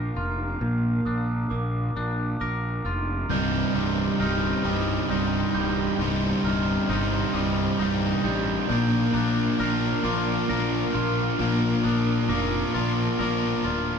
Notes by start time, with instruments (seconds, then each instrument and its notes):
Already playing: clean electric guitar A#2 A#3 D4 A#4, ambient pad D4 A#4 F5 A#5, glockenspiel D6
0.16 fingered electric bass F1, clean electric guitar F4, glockenspiel F6
0.61 fingered electric bass A#1, clean electric guitar A#2
1.05 fingered electric bass A#1, clean electric guitar D4, glockenspiel D#6
1.50 fingered electric bass A#1, clean electric guitar A#3, glockenspiel D6
1.96 fingered electric bass A#1, clean electric guitar D4
2.40 fingered electric bass A#1, clean electric guitar A#4, glockenspiel D6
2.85 fingered electric bass F1, clean electric guitar F4, glockenspiel F6
3.30 fingered electric bass C1, distorted electric guitar C2 G2 C3 G3 D#4, ambient pad D#4 C5 G5 C6, glockenspiel G6
3.75 fingered electric bass C1, distorted electric guitar C3 G3 D#4
4.19 fingered electric bass C1, distorted electric guitar G2 C3 G3 D#4, glockenspiel F6
4.65 fingered electric bass C1, overdriven electric guitar C2 G2, distorted electric guitar C3 G3 D#4, glockenspiel D#6
5.09 fingered electric bass C1, distorted electric guitar G2 C3 G3 D#4
5.54 fingered electric bass C1, distorted electric guitar C3 G3 D#4, glockenspiel G6
5.99 fingered electric bass C1, distorted electric guitar C2 G2 C3 G3 D#4
6.44 fingered electric bass C1, distorted electric guitar C3 G3 D#4, glockenspiel F6
6.89 fingered electric bass G1, distorted electric guitar G2 C3 G3 D#4, glockenspiel D#6
7.34 fingered electric bass C1, overdriven electric guitar C2 G2, distorted electric guitar C3 G3 D#4
7.79 fingered electric bass C1, distorted electric guitar G2 C3 G3 D#4, glockenspiel D#6
8.24 fingered electric bass A1, distorted electric guitar C3 G3 D#4, glockenspiel G6
8.69 fingered electric bass A#1, distorted electric guitar A#2 F3 A#3 D4 F4 A#4, ambient pad D4 A#4 F5 A#5, glockenspiel G6
9.13 fingered electric bass A#1, distorted electric guitar A#3 D4 F4 A#4
9.58 fingered electric bass A#1, distorted electric guitar A#3 D4 F4 A#4, glockenspiel F6
10.03 fingered electric bass A#1, overdriven electric guitar A#2 F3, distorted electric guitar A#3 D4 F4 A#4, glockenspiel D6
10.48 fingered electric bass A#1, distorted electric guitar A#3 D4 F4 A#4
10.93 fingered electric bass A#1, distorted electric guitar A#3 D4 F4 A#4, glockenspiel F6
11.38 fingered electric bass A#1, distorted electric guitar A#2 F3 A#3 D4 F4 A#4
11.84 fingered electric bass A#1, distorted electric guitar A#3 D4 F4 A#4, glockenspiel D#6
12.29 fingered electric bass F1, distorted electric guitar A#3 D4 F4 A#4, glockenspiel D6
12.74 fingered electric bass A#1, overdriven electric guitar A#2 F3, distorted electric guitar A#3 D4 F4 A#4
13.19 fingered electric bass A#1, distorted electric guitar A#3 D4 F4 A#4, glockenspiel D6
13.64 fingered electric bass D1, distorted electric guitar A#3 D4 F4 A#4, glockenspiel F6